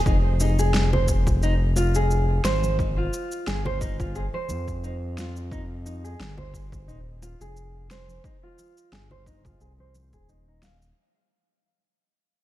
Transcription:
0.06 analog synth bass F1, nylon-string guitar D#4, kick, shaker
0.40 nylon-string guitar D#4, high conga, shaker
0.59 nylon-string guitar G#4, shaker
0.74 snare, shaker
0.93 nylon-string guitar C5, high bongo, low conga
1.08 kick, shaker
1.27 kick, high bongo, shaker
1.43 nylon-string guitar D#4, shaker
1.76 nylon-string guitar F4, high bongo, shaker
1.95 nylon-string guitar G#4, shaker
2.11 shaker
2.44 analog synth bass G#1, nylon-string guitar C5, snare, shaker
2.64 high conga, shaker
2.79 nylon-string guitar D#4, kick, shaker
2.98 nylon-string guitar F4
3.13 shaker
3.32 shaker
3.47 analog synth bass G1, nylon-string guitar G#4, snare, shaker
3.65 nylon-string guitar C5, high bongo, low conga
3.81 nylon-string guitar D#4, kick, shaker
4.00 nylon-string guitar F4, kick, high bongo, shaker
4.16 nylon-string guitar G#4, shaker
4.34 nylon-string guitar C5, high conga
4.49 analog synth bass F2, high conga, shaker
4.68 kick, shaker
4.84 nylon-string guitar D#4, shaker
5.18 nylon-string guitar F4, snare, shaker
5.36 shaker
5.52 nylon-string guitar D#4, kick, shaker
5.86 nylon-string guitar D#4, high conga, shaker
6.04 nylon-string guitar G#4, shaker
6.20 analog synth bass G1, snare, shaker
6.38 nylon-string guitar C5, high bongo, low conga
6.54 kick, shaker
6.72 kick, high bongo, shaker
6.88 analog synth bass D#1, nylon-string guitar D#4, shaker
7.22 nylon-string guitar F4, high bongo, shaker
7.41 analog synth bass F1, nylon-string guitar G#4, shaker
7.57 shaker
7.91 nylon-string guitar C5, snare, shaker
8.09 high conga, shaker
8.24 nylon-string guitar D#4, kick, shaker
8.43 nylon-string guitar F4
8.59 high conga, shaker
8.78 shaker
8.92 analog synth bass G1, nylon-string guitar G#4, snare, shaker
9.11 nylon-string guitar C5, high bongo, low conga
9.26 nylon-string guitar D#4, kick, shaker
9.45 nylon-string guitar F4, kick, high bongo, low conga, shaker
9.60 analog synth bass C2, nylon-string guitar G#4, shaker
9.79 nylon-string guitar C5, high conga
9.95 high conga, shaker
10.13 analog synth bass D#1, nylon-string guitar G#4, kick, shaker
10.29 nylon-string guitar D#4, shaker
10.48 nylon-string guitar D#4
10.62 nylon-string guitar F5, snare, high conga, shaker
10.82 shaker

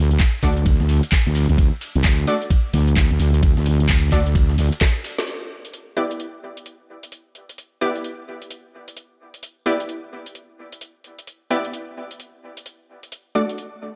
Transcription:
Already playing: wobble bass D2
0.11 closed hi-hat
0.20 kick, snare, clap, closed hi-hat, ride
0.43 wobble bass D2, synth stab A3 D4 F#4 D5, kick, clap, open hi-hat, ride
0.57 closed hi-hat
0.66 kick, closed hi-hat, ride
0.80 wobble bass D2, snare
0.89 open hi-hat, ride
1.03 closed hi-hat, ride
1.12 kick, snare, clap, closed hi-hat, ride
1.26 wobble bass D2
1.35 open hi-hat, ride
1.49 wobble bass D2, closed hi-hat
1.58 wobble bass D2, kick, closed hi-hat, ride
1.81 open hi-hat, ride
1.95 wobble bass C2, closed hi-hat
2.04 wobble bass D2, kick, snare, clap, closed hi-hat, ride
2.19 ride
2.27 synth stab A3 D4 F#4 D5, open hi-hat, ride
2.42 closed hi-hat
2.50 kick, closed hi-hat, ride
2.73 wobble bass D2, open hi-hat, ride
2.88 closed hi-hat
2.97 kick, snare, clap, closed hi-hat, ride
3.11 wobble bass D2, ride
3.20 wobble bass D2, open hi-hat, ride
3.34 closed hi-hat
3.43 kick, closed hi-hat, ride
3.57 wobble bass D2, snare
3.66 open hi-hat
3.80 closed hi-hat
3.89 wobble bass D2, kick, snare, clap, closed hi-hat, ride
4.12 wobble bass D2, synth stab A3 D4 F#4 D5, kick, clap, open hi-hat, ride
4.26 closed hi-hat
4.35 kick, closed hi-hat, ride
4.49 snare
4.58 wobble bass D2, open hi-hat, ride
4.72 closed hi-hat, ride
4.81 kick, snare, clap, closed hi-hat, ride
5.04 open hi-hat, ride
5.19 snare, closed hi-hat
5.27 closed hi-hat
5.65 closed hi-hat
5.74 closed hi-hat
5.97 synth stab B3 E4 G4 D5, closed hi-hat
6.11 closed hi-hat
6.20 closed hi-hat
6.57 closed hi-hat
6.66 closed hi-hat
7.03 closed hi-hat
7.12 closed hi-hat
7.35 closed hi-hat
7.49 closed hi-hat
7.58 closed hi-hat
7.81 synth stab B3 E4 G4 D5, closed hi-hat
7.96 closed hi-hat
8.04 closed hi-hat
8.42 closed hi-hat
8.51 closed hi-hat
8.88 closed hi-hat
8.97 closed hi-hat
9.34 closed hi-hat
9.43 closed hi-hat
9.66 synth stab B3 E4 G4 D5, closed hi-hat
9.80 closed hi-hat
9.89 closed hi-hat
10.26 closed hi-hat
10.35 closed hi-hat
10.72 closed hi-hat
10.81 closed hi-hat
11.04 closed hi-hat
11.19 closed hi-hat
11.27 closed hi-hat
11.50 synth stab B3 E4 G4 D5, closed hi-hat
11.65 closed hi-hat
11.73 closed hi-hat
12.11 closed hi-hat
12.20 closed hi-hat
12.57 closed hi-hat
12.66 closed hi-hat
13.03 closed hi-hat
13.12 closed hi-hat
13.35 synth stab A3 D4 F#4 D5, closed hi-hat
13.49 closed hi-hat
13.58 closed hi-hat

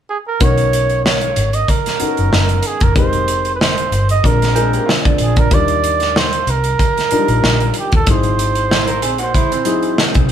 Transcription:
0.10 flugelhorn G#4
0.27 flugelhorn A#4
0.40 fingered electric bass B1, grand piano B3 C#4 D#4 F#4 A#4, flugelhorn C#5, kick, closed hi-hat
0.58 closed hi-hat
0.73 closed hi-hat
0.90 closed hi-hat
1.05 flugelhorn C#5, snare
1.21 closed hi-hat
1.36 fingered electric bass G#1, closed hi-hat
1.53 flugelhorn D#5, closed hi-hat
1.68 flugelhorn A#4, kick, closed hi-hat
1.86 snare, closed hi-hat
1.99 grand piano B3 C#4 D#4 F#4 A4, muted fingered electric bass stroke, closed hi-hat
2.07 grand piano A#4
2.17 fingered electric bass F#1, closed hi-hat
2.33 fingered electric bass F#1, snare
2.49 closed hi-hat
2.63 closed hi-hat
2.67 flugelhorn G#4
2.80 fingered electric bass F#1, flugelhorn A#4, kick, closed hi-hat
2.95 fingered electric bass F1, grand piano G#3 C4 D#4 G4 A#4, flugelhorn C5, kick, closed hi-hat
3.13 closed hi-hat
3.28 closed hi-hat
3.45 closed hi-hat
3.55 flugelhorn B4
3.61 flugelhorn C5, snare
3.78 closed hi-hat
3.92 fingered electric bass G1, closed hi-hat
4.09 flugelhorn D#5, closed hi-hat
4.23 fingered electric bass A#1, grand piano G#3 C4 D4 F4 A#4, flugelhorn A#4, kick, closed hi-hat
4.42 snare, closed hi-hat
4.55 grand piano G#3 C4 D4 F4 A#4, clean electric guitar C4 G#4, closed hi-hat
4.73 clean electric guitar A#3 G4, closed hi-hat
4.86 clean electric guitar G#3 F4, snare
5.03 fingered electric bass D2, clean electric guitar F3 D4, kick, closed hi-hat
5.18 fingered electric bass A#1, flugelhorn G#4, closed hi-hat
5.36 flugelhorn A#4, kick, closed hi-hat
5.51 fingered electric bass D#2, grand piano G3 D4 D#4 F4 A#4, flugelhorn D5, kick, closed hi-hat
5.68 closed hi-hat
5.84 closed hi-hat
6.00 snare, closed hi-hat
6.16 flugelhorn C5, snare
6.33 closed hi-hat
6.47 fingered electric bass C2, flugelhorn A#4, closed hi-hat
6.64 closed hi-hat
6.79 kick, closed hi-hat
6.97 snare, closed hi-hat
7.11 grand piano F3 D4 D#4 F4 A#4, muted fingered electric bass stroke, closed hi-hat
7.18 grand piano G3
7.28 fingered electric bass A#1, closed hi-hat
7.44 fingered electric bass A#1, snare
7.60 closed hi-hat
7.74 closed hi-hat
7.79 flugelhorn G4
7.92 fingered electric bass D#2, flugelhorn A4, kick, closed hi-hat
8.07 fingered electric bass G#1, grand piano F#3 C4 D#4 E4 G#4, flugelhorn C5, kick, closed hi-hat
8.23 closed hi-hat
8.39 closed hi-hat
8.55 closed hi-hat
8.71 clean electric guitar E4 C5, snare
8.87 clean electric guitar A#4, closed hi-hat
9.02 fingered electric bass A#1, clean electric guitar C4 G#4, closed hi-hat
9.18 clean electric guitar A#3 F#4, closed hi-hat
9.23 flugelhorn C5
9.34 clean electric guitar G#3 E4, kick, closed hi-hat
9.52 clean electric guitar E3 C4, closed hi-hat
9.65 grand piano F#3 C4 D#4 E4 G#4, closed hi-hat
9.83 closed hi-hat
9.98 snare
10.14 fingered electric bass C2, kick, closed hi-hat
10.29 open hi-hat

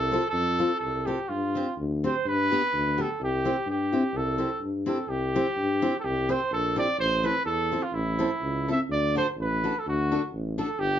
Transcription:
Already playing: tuba C2, trumpet A4
0.12 steel-string acoustic guitar C4 F4 A4
0.30 tuba F2, trumpet A4
0.59 steel-string acoustic guitar C4 F4 A4
0.79 tuba C2, trumpet A4
1.06 steel-string acoustic guitar C4 F4 A4, trumpet G4
1.28 tuba G2, trumpet F4
1.55 steel-string acoustic guitar C4 D4 G4
1.77 tuba D2
2.04 steel-string acoustic guitar C4 D4 G4, trumpet C5
2.25 tuba G2, trumpet B4
2.52 steel-string acoustic guitar B3 D4 G4
2.72 tuba D2
2.98 steel-string acoustic guitar B3 D4 G4, trumpet A4
3.20 tuba C2, trumpet G4
3.45 steel-string acoustic guitar C4 E4 G4
3.66 tuba G2
3.70 trumpet G4
3.92 steel-string acoustic guitar C4 E4 G4
4.13 tuba C2, trumpet A4
4.38 steel-string acoustic guitar C4 E4 G4
4.60 tuba G2
4.86 steel-string acoustic guitar C4 E4 G4, trumpet A4
5.08 tuba C2, trumpet G4
5.36 steel-string acoustic guitar C4 E4 G4
5.57 tuba G2
5.82 steel-string acoustic guitar C4 E4 G4
5.99 trumpet A4
6.04 tuba C2, trumpet G4
6.29 steel-string acoustic guitar C4 E4 G4, trumpet C5
6.51 tuba A#1, trumpet A4
6.76 steel-string acoustic guitar C4 E4 G4, trumpet D5
6.98 tuba A1, trumpet C5
7.23 steel-string acoustic guitar C4 E4 A4, trumpet B4
7.45 tuba E2, trumpet A4
7.72 steel-string acoustic guitar C4 E4 A4
7.83 trumpet F4
7.92 tuba A1, trumpet E4
8.19 steel-string acoustic guitar C4 E4 A4
8.41 tuba C#2
8.68 steel-string acoustic guitar C4 E4 A4, trumpet E5
8.89 tuba D2, trumpet D5
9.15 steel-string acoustic guitar D4 F#4 A4, trumpet C5
9.37 tuba A1
9.41 trumpet B4
9.64 steel-string acoustic guitar D4 F#4 A4
9.79 trumpet A4
9.86 tuba D2, trumpet F#4
10.11 steel-string acoustic guitar D4 F#4 A4
10.32 tuba A1
10.58 steel-string acoustic guitar D4 F#4 A4, trumpet A4
10.79 tuba G1, trumpet G4

